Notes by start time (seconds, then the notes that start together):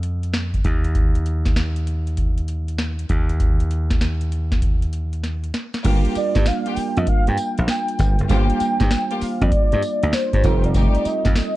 Already playing: F2
0.03 closed hi-hat
0.23 closed hi-hat
0.34 snare, closed hi-hat
0.54 kick, closed hi-hat
0.64 D#2, kick, closed hi-hat
0.84 closed hi-hat
0.95 kick, closed hi-hat
1.15 closed hi-hat
1.26 closed hi-hat
1.45 kick, snare, closed hi-hat
1.56 snare, closed hi-hat
1.76 closed hi-hat
1.87 closed hi-hat
2.07 closed hi-hat
2.17 kick, closed hi-hat
2.38 closed hi-hat
2.48 closed hi-hat
2.68 closed hi-hat
2.78 snare, closed hi-hat
2.99 closed hi-hat
3.09 D#2, kick, closed hi-hat
3.29 closed hi-hat
3.40 kick, closed hi-hat
3.60 closed hi-hat
3.71 closed hi-hat
3.90 kick, snare, closed hi-hat
4.01 snare, closed hi-hat
4.21 closed hi-hat
4.32 closed hi-hat
4.51 kick, snare, closed hi-hat
4.62 kick, closed hi-hat
4.82 closed hi-hat
4.93 closed hi-hat
5.13 closed hi-hat
5.23 snare, closed hi-hat
5.44 closed hi-hat
5.54 snare, closed hi-hat
5.74 snare, closed hi-hat
5.84 G1 G3 A#3 D4 F4 G4 A#4, kick, closed hi-hat, crash, tambourine
6.05 closed hi-hat
6.15 D5, muted slap bass stroke, closed hi-hat, tambourine
6.35 G2, kick, snare, closed hi-hat
6.46 F5, snare, closed hi-hat, tambourine
6.66 A#3 F4 G4 G5, closed hi-hat
6.76 muted slap bass stroke, open hi-hat, tambourine
6.97 F2 D#5, closed hi-hat
7.07 F5, kick, closed hi-hat
7.27 G2 G5, closed hi-hat
7.38 closed hi-hat, tambourine
7.58 A#1 F5, closed hi-hat
7.68 G5, snare, closed hi-hat, tambourine
7.88 closed hi-hat
7.99 G1, kick, closed hi-hat, tambourine
8.19 F#1, closed hi-hat
8.29 G1 G3 A#3 D4 F4 G4 C5 G5, kick, closed hi-hat, tambourine
8.50 closed hi-hat
8.60 muted slap bass stroke, closed hi-hat, tambourine
8.80 G2, kick, snare, closed hi-hat
8.91 snare, closed hi-hat, tambourine
9.11 A#3 F4 G4, closed hi-hat
9.21 F5, muted slap bass stroke, open hi-hat, tambourine
9.41 F2 D5, kick, closed hi-hat
9.52 kick, closed hi-hat
9.72 G2, closed hi-hat
9.83 closed hi-hat, tambourine
10.03 D2, closed hi-hat
10.13 C5, snare, closed hi-hat, tambourine
10.33 G2, kick, closed hi-hat
10.43 F1 G3 A3 C4 D#4 F4 G4 A4, kick, closed hi-hat, tambourine
10.64 D5, closed hi-hat
10.74 A3 D#4 G4, kick, closed hi-hat, tambourine
10.95 closed hi-hat
11.01 D5
11.05 D#5, muted slap bass stroke, closed hi-hat, tambourine
11.25 F2, kick, snare, closed hi-hat
11.35 snare, closed hi-hat, tambourine